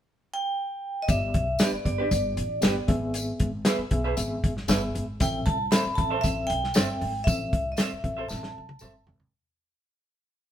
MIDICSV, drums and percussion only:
0, 0, Header, 1, 2, 480
1, 0, Start_track
1, 0, Key_signature, 0, "minor"
1, 0, Tempo, 515021
1, 1009, Time_signature, 4, 2, 24, 8
1, 9799, End_track
2, 0, Start_track
2, 0, Title_t, "Drums"
2, 1010, Note_on_c, 9, 42, 79
2, 1012, Note_on_c, 9, 54, 74
2, 1013, Note_on_c, 9, 36, 98
2, 1103, Note_off_c, 9, 42, 0
2, 1105, Note_off_c, 9, 54, 0
2, 1106, Note_off_c, 9, 36, 0
2, 1250, Note_on_c, 9, 42, 68
2, 1253, Note_on_c, 9, 36, 84
2, 1343, Note_off_c, 9, 42, 0
2, 1347, Note_off_c, 9, 36, 0
2, 1479, Note_on_c, 9, 54, 80
2, 1489, Note_on_c, 9, 38, 110
2, 1491, Note_on_c, 9, 42, 96
2, 1572, Note_off_c, 9, 54, 0
2, 1582, Note_off_c, 9, 38, 0
2, 1584, Note_off_c, 9, 42, 0
2, 1728, Note_on_c, 9, 36, 73
2, 1734, Note_on_c, 9, 42, 52
2, 1822, Note_off_c, 9, 36, 0
2, 1827, Note_off_c, 9, 42, 0
2, 1968, Note_on_c, 9, 54, 69
2, 1972, Note_on_c, 9, 36, 80
2, 1975, Note_on_c, 9, 42, 73
2, 2062, Note_off_c, 9, 54, 0
2, 2065, Note_off_c, 9, 36, 0
2, 2068, Note_off_c, 9, 42, 0
2, 2210, Note_on_c, 9, 42, 74
2, 2303, Note_off_c, 9, 42, 0
2, 2439, Note_on_c, 9, 42, 75
2, 2441, Note_on_c, 9, 54, 87
2, 2452, Note_on_c, 9, 38, 106
2, 2533, Note_off_c, 9, 42, 0
2, 2534, Note_off_c, 9, 54, 0
2, 2545, Note_off_c, 9, 38, 0
2, 2686, Note_on_c, 9, 42, 71
2, 2689, Note_on_c, 9, 36, 94
2, 2779, Note_off_c, 9, 42, 0
2, 2782, Note_off_c, 9, 36, 0
2, 2926, Note_on_c, 9, 42, 83
2, 2938, Note_on_c, 9, 54, 75
2, 3019, Note_off_c, 9, 42, 0
2, 3031, Note_off_c, 9, 54, 0
2, 3165, Note_on_c, 9, 42, 69
2, 3171, Note_on_c, 9, 36, 87
2, 3258, Note_off_c, 9, 42, 0
2, 3264, Note_off_c, 9, 36, 0
2, 3400, Note_on_c, 9, 38, 104
2, 3402, Note_on_c, 9, 42, 106
2, 3406, Note_on_c, 9, 54, 75
2, 3493, Note_off_c, 9, 38, 0
2, 3495, Note_off_c, 9, 42, 0
2, 3499, Note_off_c, 9, 54, 0
2, 3643, Note_on_c, 9, 42, 54
2, 3646, Note_on_c, 9, 36, 74
2, 3736, Note_off_c, 9, 42, 0
2, 3739, Note_off_c, 9, 36, 0
2, 3885, Note_on_c, 9, 54, 78
2, 3890, Note_on_c, 9, 42, 85
2, 3978, Note_off_c, 9, 54, 0
2, 3983, Note_off_c, 9, 42, 0
2, 4135, Note_on_c, 9, 36, 90
2, 4137, Note_on_c, 9, 42, 73
2, 4229, Note_off_c, 9, 36, 0
2, 4231, Note_off_c, 9, 42, 0
2, 4257, Note_on_c, 9, 38, 33
2, 4351, Note_off_c, 9, 38, 0
2, 4362, Note_on_c, 9, 42, 74
2, 4365, Note_on_c, 9, 54, 89
2, 4375, Note_on_c, 9, 38, 105
2, 4455, Note_off_c, 9, 42, 0
2, 4458, Note_off_c, 9, 54, 0
2, 4468, Note_off_c, 9, 38, 0
2, 4617, Note_on_c, 9, 42, 62
2, 4710, Note_off_c, 9, 42, 0
2, 4848, Note_on_c, 9, 42, 84
2, 4853, Note_on_c, 9, 36, 109
2, 4859, Note_on_c, 9, 54, 78
2, 4941, Note_off_c, 9, 42, 0
2, 4946, Note_off_c, 9, 36, 0
2, 4952, Note_off_c, 9, 54, 0
2, 5090, Note_on_c, 9, 42, 74
2, 5095, Note_on_c, 9, 36, 85
2, 5183, Note_off_c, 9, 42, 0
2, 5188, Note_off_c, 9, 36, 0
2, 5329, Note_on_c, 9, 38, 117
2, 5330, Note_on_c, 9, 54, 77
2, 5331, Note_on_c, 9, 42, 102
2, 5423, Note_off_c, 9, 38, 0
2, 5423, Note_off_c, 9, 54, 0
2, 5424, Note_off_c, 9, 42, 0
2, 5572, Note_on_c, 9, 42, 57
2, 5573, Note_on_c, 9, 36, 79
2, 5665, Note_off_c, 9, 42, 0
2, 5666, Note_off_c, 9, 36, 0
2, 5810, Note_on_c, 9, 54, 66
2, 5817, Note_on_c, 9, 36, 86
2, 5822, Note_on_c, 9, 42, 76
2, 5903, Note_off_c, 9, 54, 0
2, 5911, Note_off_c, 9, 36, 0
2, 5915, Note_off_c, 9, 42, 0
2, 6055, Note_on_c, 9, 42, 77
2, 6148, Note_off_c, 9, 42, 0
2, 6186, Note_on_c, 9, 38, 35
2, 6280, Note_off_c, 9, 38, 0
2, 6282, Note_on_c, 9, 54, 82
2, 6287, Note_on_c, 9, 42, 70
2, 6300, Note_on_c, 9, 38, 107
2, 6375, Note_off_c, 9, 54, 0
2, 6380, Note_off_c, 9, 42, 0
2, 6393, Note_off_c, 9, 38, 0
2, 6538, Note_on_c, 9, 46, 47
2, 6631, Note_off_c, 9, 46, 0
2, 6776, Note_on_c, 9, 36, 115
2, 6777, Note_on_c, 9, 42, 75
2, 6782, Note_on_c, 9, 54, 82
2, 6869, Note_off_c, 9, 36, 0
2, 6870, Note_off_c, 9, 42, 0
2, 6875, Note_off_c, 9, 54, 0
2, 7017, Note_on_c, 9, 42, 69
2, 7018, Note_on_c, 9, 36, 93
2, 7110, Note_off_c, 9, 42, 0
2, 7111, Note_off_c, 9, 36, 0
2, 7242, Note_on_c, 9, 54, 83
2, 7252, Note_on_c, 9, 38, 111
2, 7253, Note_on_c, 9, 42, 107
2, 7335, Note_off_c, 9, 54, 0
2, 7345, Note_off_c, 9, 38, 0
2, 7346, Note_off_c, 9, 42, 0
2, 7493, Note_on_c, 9, 36, 73
2, 7495, Note_on_c, 9, 42, 51
2, 7586, Note_off_c, 9, 36, 0
2, 7588, Note_off_c, 9, 42, 0
2, 7729, Note_on_c, 9, 54, 79
2, 7741, Note_on_c, 9, 38, 49
2, 7822, Note_off_c, 9, 54, 0
2, 7834, Note_off_c, 9, 38, 0
2, 7858, Note_on_c, 9, 38, 48
2, 7951, Note_off_c, 9, 38, 0
2, 8099, Note_on_c, 9, 48, 70
2, 8193, Note_off_c, 9, 48, 0
2, 8193, Note_on_c, 9, 54, 90
2, 8216, Note_on_c, 9, 47, 68
2, 8286, Note_off_c, 9, 54, 0
2, 8309, Note_off_c, 9, 47, 0
2, 8451, Note_on_c, 9, 43, 96
2, 8545, Note_off_c, 9, 43, 0
2, 8573, Note_on_c, 9, 43, 79
2, 8666, Note_off_c, 9, 43, 0
2, 9799, End_track
0, 0, End_of_file